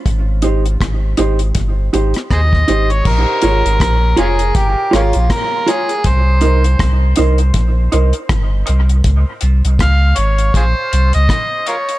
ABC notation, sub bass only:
X:1
M:4/4
L:1/16
Q:"Swing 16ths" 1/4=80
K:Bbdor
V:1 name="Sub bass" clef=bass
A,,,4 A,,,2 A,,,2 G,,,2 A,,, z E,,2 A,,,2 | B,,, z A,,, A,,, B,,,2 F,,,2 G,,, z A,,, B,,, z4 | C,,4 C,,2 C,,2 B,,,2 C,, z G,,,2 C,,2 | D,, z C,, C,, D,,2 A,,,2 B,,, z C,, D,, z4 |]